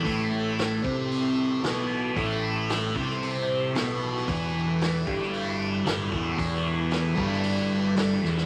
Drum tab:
HH |o---o---o---o---|o---o---o---o---|o---o---o---o---|o---o---o---o---|
SD |----o-------o---|----o--o----o--o|----o--o----o---|----o--o----o-oo|
BD |o-----o---------|o-----o---------|o-----o-------o-|o-----o---------|